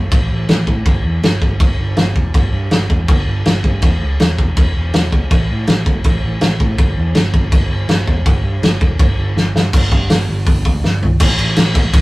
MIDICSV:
0, 0, Header, 1, 3, 480
1, 0, Start_track
1, 0, Tempo, 369458
1, 1128, Time_signature, 4, 2, 24, 8
1, 15607, End_track
2, 0, Start_track
2, 0, Title_t, "Picked electric bass"
2, 0, Program_c, 0, 34
2, 155, Note_on_c, 0, 33, 93
2, 332, Note_off_c, 0, 33, 0
2, 403, Note_on_c, 0, 33, 97
2, 577, Note_off_c, 0, 33, 0
2, 638, Note_on_c, 0, 33, 81
2, 814, Note_off_c, 0, 33, 0
2, 871, Note_on_c, 0, 45, 82
2, 1050, Note_off_c, 0, 45, 0
2, 1117, Note_on_c, 0, 31, 99
2, 1294, Note_off_c, 0, 31, 0
2, 1351, Note_on_c, 0, 40, 94
2, 1531, Note_off_c, 0, 40, 0
2, 1600, Note_on_c, 0, 31, 89
2, 1777, Note_off_c, 0, 31, 0
2, 1843, Note_on_c, 0, 31, 104
2, 2019, Note_off_c, 0, 31, 0
2, 2086, Note_on_c, 0, 31, 104
2, 2261, Note_off_c, 0, 31, 0
2, 2327, Note_on_c, 0, 31, 89
2, 2502, Note_off_c, 0, 31, 0
2, 2566, Note_on_c, 0, 31, 96
2, 2742, Note_off_c, 0, 31, 0
2, 2806, Note_on_c, 0, 28, 79
2, 2982, Note_off_c, 0, 28, 0
2, 3048, Note_on_c, 0, 31, 102
2, 3223, Note_off_c, 0, 31, 0
2, 3283, Note_on_c, 0, 43, 87
2, 3460, Note_off_c, 0, 43, 0
2, 3526, Note_on_c, 0, 31, 85
2, 3703, Note_off_c, 0, 31, 0
2, 3771, Note_on_c, 0, 28, 105
2, 3946, Note_off_c, 0, 28, 0
2, 4009, Note_on_c, 0, 31, 96
2, 4185, Note_off_c, 0, 31, 0
2, 4255, Note_on_c, 0, 31, 94
2, 4428, Note_off_c, 0, 31, 0
2, 4502, Note_on_c, 0, 31, 82
2, 4673, Note_off_c, 0, 31, 0
2, 4734, Note_on_c, 0, 43, 83
2, 4908, Note_off_c, 0, 43, 0
2, 4968, Note_on_c, 0, 28, 99
2, 5144, Note_off_c, 0, 28, 0
2, 5214, Note_on_c, 0, 37, 91
2, 5388, Note_off_c, 0, 37, 0
2, 5462, Note_on_c, 0, 28, 94
2, 5633, Note_off_c, 0, 28, 0
2, 5695, Note_on_c, 0, 28, 105
2, 5869, Note_off_c, 0, 28, 0
2, 5944, Note_on_c, 0, 28, 94
2, 6114, Note_off_c, 0, 28, 0
2, 6196, Note_on_c, 0, 28, 86
2, 6362, Note_off_c, 0, 28, 0
2, 6431, Note_on_c, 0, 28, 86
2, 6599, Note_off_c, 0, 28, 0
2, 6660, Note_on_c, 0, 37, 82
2, 6831, Note_off_c, 0, 37, 0
2, 6899, Note_on_c, 0, 33, 87
2, 7071, Note_off_c, 0, 33, 0
2, 7159, Note_on_c, 0, 45, 77
2, 7324, Note_off_c, 0, 45, 0
2, 7392, Note_on_c, 0, 33, 87
2, 7559, Note_off_c, 0, 33, 0
2, 7618, Note_on_c, 0, 30, 113
2, 7790, Note_off_c, 0, 30, 0
2, 7854, Note_on_c, 0, 33, 91
2, 8027, Note_off_c, 0, 33, 0
2, 8109, Note_on_c, 0, 33, 96
2, 8277, Note_off_c, 0, 33, 0
2, 8353, Note_on_c, 0, 33, 81
2, 8519, Note_off_c, 0, 33, 0
2, 8578, Note_on_c, 0, 45, 86
2, 8749, Note_off_c, 0, 45, 0
2, 8813, Note_on_c, 0, 31, 105
2, 8986, Note_off_c, 0, 31, 0
2, 9060, Note_on_c, 0, 40, 94
2, 9231, Note_off_c, 0, 40, 0
2, 9307, Note_on_c, 0, 31, 86
2, 9475, Note_off_c, 0, 31, 0
2, 9534, Note_on_c, 0, 31, 105
2, 9706, Note_off_c, 0, 31, 0
2, 9775, Note_on_c, 0, 31, 101
2, 9947, Note_off_c, 0, 31, 0
2, 10003, Note_on_c, 0, 31, 85
2, 10179, Note_off_c, 0, 31, 0
2, 10247, Note_on_c, 0, 31, 89
2, 10422, Note_off_c, 0, 31, 0
2, 10496, Note_on_c, 0, 28, 87
2, 10667, Note_off_c, 0, 28, 0
2, 10727, Note_on_c, 0, 31, 104
2, 10902, Note_off_c, 0, 31, 0
2, 10964, Note_on_c, 0, 43, 88
2, 11139, Note_off_c, 0, 43, 0
2, 11207, Note_on_c, 0, 31, 97
2, 11381, Note_off_c, 0, 31, 0
2, 11450, Note_on_c, 0, 28, 94
2, 11623, Note_off_c, 0, 28, 0
2, 11687, Note_on_c, 0, 31, 101
2, 11861, Note_off_c, 0, 31, 0
2, 11925, Note_on_c, 0, 31, 95
2, 12100, Note_off_c, 0, 31, 0
2, 12164, Note_on_c, 0, 31, 85
2, 12339, Note_off_c, 0, 31, 0
2, 12415, Note_on_c, 0, 43, 83
2, 12585, Note_off_c, 0, 43, 0
2, 12650, Note_on_c, 0, 31, 85
2, 12849, Note_off_c, 0, 31, 0
2, 12885, Note_on_c, 0, 43, 83
2, 13087, Note_off_c, 0, 43, 0
2, 13129, Note_on_c, 0, 31, 87
2, 13328, Note_off_c, 0, 31, 0
2, 13370, Note_on_c, 0, 31, 104
2, 13569, Note_off_c, 0, 31, 0
2, 13600, Note_on_c, 0, 31, 106
2, 13802, Note_off_c, 0, 31, 0
2, 13842, Note_on_c, 0, 38, 92
2, 14043, Note_off_c, 0, 38, 0
2, 14083, Note_on_c, 0, 31, 90
2, 14484, Note_off_c, 0, 31, 0
2, 14559, Note_on_c, 0, 33, 106
2, 14730, Note_off_c, 0, 33, 0
2, 14801, Note_on_c, 0, 33, 85
2, 14971, Note_off_c, 0, 33, 0
2, 15051, Note_on_c, 0, 33, 93
2, 15386, Note_off_c, 0, 33, 0
2, 15506, Note_on_c, 0, 33, 96
2, 15607, Note_off_c, 0, 33, 0
2, 15607, End_track
3, 0, Start_track
3, 0, Title_t, "Drums"
3, 152, Note_on_c, 9, 36, 127
3, 154, Note_on_c, 9, 49, 68
3, 282, Note_off_c, 9, 36, 0
3, 284, Note_off_c, 9, 49, 0
3, 632, Note_on_c, 9, 49, 60
3, 638, Note_on_c, 9, 38, 116
3, 762, Note_off_c, 9, 49, 0
3, 767, Note_off_c, 9, 38, 0
3, 872, Note_on_c, 9, 36, 84
3, 1002, Note_off_c, 9, 36, 0
3, 1112, Note_on_c, 9, 49, 59
3, 1113, Note_on_c, 9, 36, 115
3, 1242, Note_off_c, 9, 49, 0
3, 1243, Note_off_c, 9, 36, 0
3, 1603, Note_on_c, 9, 49, 59
3, 1608, Note_on_c, 9, 38, 110
3, 1733, Note_off_c, 9, 49, 0
3, 1738, Note_off_c, 9, 38, 0
3, 1840, Note_on_c, 9, 36, 94
3, 1970, Note_off_c, 9, 36, 0
3, 2080, Note_on_c, 9, 36, 121
3, 2084, Note_on_c, 9, 49, 67
3, 2209, Note_off_c, 9, 36, 0
3, 2214, Note_off_c, 9, 49, 0
3, 2554, Note_on_c, 9, 49, 51
3, 2559, Note_on_c, 9, 38, 102
3, 2684, Note_off_c, 9, 49, 0
3, 2689, Note_off_c, 9, 38, 0
3, 2802, Note_on_c, 9, 36, 82
3, 2932, Note_off_c, 9, 36, 0
3, 3044, Note_on_c, 9, 36, 104
3, 3045, Note_on_c, 9, 49, 57
3, 3174, Note_off_c, 9, 36, 0
3, 3175, Note_off_c, 9, 49, 0
3, 3521, Note_on_c, 9, 49, 56
3, 3526, Note_on_c, 9, 38, 106
3, 3651, Note_off_c, 9, 49, 0
3, 3656, Note_off_c, 9, 38, 0
3, 3767, Note_on_c, 9, 36, 87
3, 3896, Note_off_c, 9, 36, 0
3, 4004, Note_on_c, 9, 49, 71
3, 4007, Note_on_c, 9, 36, 127
3, 4134, Note_off_c, 9, 49, 0
3, 4137, Note_off_c, 9, 36, 0
3, 4489, Note_on_c, 9, 49, 65
3, 4494, Note_on_c, 9, 38, 113
3, 4619, Note_off_c, 9, 49, 0
3, 4624, Note_off_c, 9, 38, 0
3, 4729, Note_on_c, 9, 36, 89
3, 4859, Note_off_c, 9, 36, 0
3, 4961, Note_on_c, 9, 49, 64
3, 4970, Note_on_c, 9, 36, 121
3, 5091, Note_off_c, 9, 49, 0
3, 5100, Note_off_c, 9, 36, 0
3, 5453, Note_on_c, 9, 49, 62
3, 5459, Note_on_c, 9, 38, 107
3, 5583, Note_off_c, 9, 49, 0
3, 5589, Note_off_c, 9, 38, 0
3, 5697, Note_on_c, 9, 36, 97
3, 5827, Note_off_c, 9, 36, 0
3, 5932, Note_on_c, 9, 49, 67
3, 5937, Note_on_c, 9, 36, 121
3, 6062, Note_off_c, 9, 49, 0
3, 6067, Note_off_c, 9, 36, 0
3, 6413, Note_on_c, 9, 49, 61
3, 6418, Note_on_c, 9, 38, 120
3, 6543, Note_off_c, 9, 49, 0
3, 6548, Note_off_c, 9, 38, 0
3, 6658, Note_on_c, 9, 36, 85
3, 6788, Note_off_c, 9, 36, 0
3, 6894, Note_on_c, 9, 49, 63
3, 6898, Note_on_c, 9, 36, 109
3, 7024, Note_off_c, 9, 49, 0
3, 7028, Note_off_c, 9, 36, 0
3, 7371, Note_on_c, 9, 49, 60
3, 7376, Note_on_c, 9, 38, 113
3, 7501, Note_off_c, 9, 49, 0
3, 7506, Note_off_c, 9, 38, 0
3, 7615, Note_on_c, 9, 36, 90
3, 7745, Note_off_c, 9, 36, 0
3, 7850, Note_on_c, 9, 49, 63
3, 7855, Note_on_c, 9, 36, 109
3, 7979, Note_off_c, 9, 49, 0
3, 7985, Note_off_c, 9, 36, 0
3, 8328, Note_on_c, 9, 49, 64
3, 8334, Note_on_c, 9, 38, 106
3, 8458, Note_off_c, 9, 49, 0
3, 8464, Note_off_c, 9, 38, 0
3, 8576, Note_on_c, 9, 36, 84
3, 8705, Note_off_c, 9, 36, 0
3, 8813, Note_on_c, 9, 49, 61
3, 8815, Note_on_c, 9, 36, 113
3, 8943, Note_off_c, 9, 49, 0
3, 8945, Note_off_c, 9, 36, 0
3, 9286, Note_on_c, 9, 49, 64
3, 9292, Note_on_c, 9, 38, 116
3, 9416, Note_off_c, 9, 49, 0
3, 9422, Note_off_c, 9, 38, 0
3, 9533, Note_on_c, 9, 36, 100
3, 9663, Note_off_c, 9, 36, 0
3, 9771, Note_on_c, 9, 36, 117
3, 9771, Note_on_c, 9, 49, 73
3, 9901, Note_off_c, 9, 36, 0
3, 9901, Note_off_c, 9, 49, 0
3, 10247, Note_on_c, 9, 49, 63
3, 10253, Note_on_c, 9, 38, 102
3, 10377, Note_off_c, 9, 49, 0
3, 10382, Note_off_c, 9, 38, 0
3, 10491, Note_on_c, 9, 36, 80
3, 10621, Note_off_c, 9, 36, 0
3, 10730, Note_on_c, 9, 36, 119
3, 10730, Note_on_c, 9, 49, 55
3, 10860, Note_off_c, 9, 36, 0
3, 10860, Note_off_c, 9, 49, 0
3, 11213, Note_on_c, 9, 49, 62
3, 11218, Note_on_c, 9, 38, 114
3, 11343, Note_off_c, 9, 49, 0
3, 11348, Note_off_c, 9, 38, 0
3, 11447, Note_on_c, 9, 36, 102
3, 11577, Note_off_c, 9, 36, 0
3, 11685, Note_on_c, 9, 36, 124
3, 11686, Note_on_c, 9, 49, 63
3, 11815, Note_off_c, 9, 36, 0
3, 11816, Note_off_c, 9, 49, 0
3, 12169, Note_on_c, 9, 38, 66
3, 12299, Note_off_c, 9, 38, 0
3, 12416, Note_on_c, 9, 38, 88
3, 12546, Note_off_c, 9, 38, 0
3, 12642, Note_on_c, 9, 57, 106
3, 12646, Note_on_c, 9, 36, 113
3, 12772, Note_off_c, 9, 57, 0
3, 12776, Note_off_c, 9, 36, 0
3, 12884, Note_on_c, 9, 36, 90
3, 13014, Note_off_c, 9, 36, 0
3, 13118, Note_on_c, 9, 46, 64
3, 13123, Note_on_c, 9, 38, 117
3, 13248, Note_off_c, 9, 46, 0
3, 13253, Note_off_c, 9, 38, 0
3, 13591, Note_on_c, 9, 46, 74
3, 13597, Note_on_c, 9, 36, 116
3, 13721, Note_off_c, 9, 46, 0
3, 13727, Note_off_c, 9, 36, 0
3, 13839, Note_on_c, 9, 36, 95
3, 13968, Note_off_c, 9, 36, 0
3, 14085, Note_on_c, 9, 38, 68
3, 14215, Note_off_c, 9, 38, 0
3, 14326, Note_on_c, 9, 43, 93
3, 14456, Note_off_c, 9, 43, 0
3, 14549, Note_on_c, 9, 49, 88
3, 14549, Note_on_c, 9, 57, 127
3, 14553, Note_on_c, 9, 36, 127
3, 14679, Note_off_c, 9, 49, 0
3, 14679, Note_off_c, 9, 57, 0
3, 14683, Note_off_c, 9, 36, 0
3, 14792, Note_on_c, 9, 49, 74
3, 14922, Note_off_c, 9, 49, 0
3, 15024, Note_on_c, 9, 49, 90
3, 15029, Note_on_c, 9, 38, 106
3, 15154, Note_off_c, 9, 49, 0
3, 15159, Note_off_c, 9, 38, 0
3, 15265, Note_on_c, 9, 49, 79
3, 15267, Note_on_c, 9, 36, 101
3, 15395, Note_off_c, 9, 49, 0
3, 15397, Note_off_c, 9, 36, 0
3, 15505, Note_on_c, 9, 49, 103
3, 15506, Note_on_c, 9, 36, 127
3, 15607, Note_off_c, 9, 36, 0
3, 15607, Note_off_c, 9, 49, 0
3, 15607, End_track
0, 0, End_of_file